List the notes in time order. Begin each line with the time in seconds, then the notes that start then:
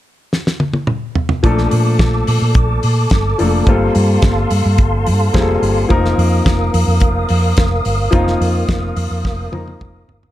0.33 snare
0.47 snare
0.60 high tom
0.74 high tom
0.87 mid tom
1.15 floor tom
1.29 floor tom
1.43 A#1 F3 A3 A#3 D4 A4 A5 D6, kick, closed hi-hat
1.58 snare
1.71 A#2, open hi-hat
1.99 A#1, kick, snare, closed hi-hat
2.27 A#2, open hi-hat
2.42 A#2
2.54 A#1, kick, closed hi-hat
2.83 A#2, open hi-hat
3.10 G1, kick, snare, closed hi-hat
3.38 F1 F3 A3 A#3 D4 A4, open hi-hat
3.66 G1 G3 A#3 C4 F4 A4 F5 C6, kick, closed hi-hat
3.95 G2, open hi-hat
4.22 G1, kick, snare, closed hi-hat
4.50 G2, open hi-hat
4.66 G2
4.78 G1, kick, closed hi-hat
5.06 G2, open hi-hat
5.33 F1 G3 A#3 C4 F4 G#4, kick, snare, closed hi-hat
5.41 A4
5.62 G1, open hi-hat
5.89 F1 F3 A#3 C4 D#4 A#4 D#6, kick, closed hi-hat
6.05 snare
6.18 F2, open hi-hat
6.46 F1, kick, snare, closed hi-hat
6.74 F2, open hi-hat
6.88 F2
7.00 F1, kick, closed hi-hat
7.29 F2, open hi-hat
7.57 F1, kick, snare, closed hi-hat
7.85 G1, open hi-hat
8.11 F1 F3 A#3 C4 D#4 F4, kick, closed hi-hat
8.27 snare
8.41 F2, open hi-hat
8.69 F1, kick, snare, closed hi-hat
8.96 F2, open hi-hat
9.11 F2
9.25 F1, kick, snare
9.52 F2 F3 A#3 C4 D#4 A#4, high tom
9.68 high tom
9.81 F1, kick, mid tom
10.08 G1, floor tom
10.23 floor tom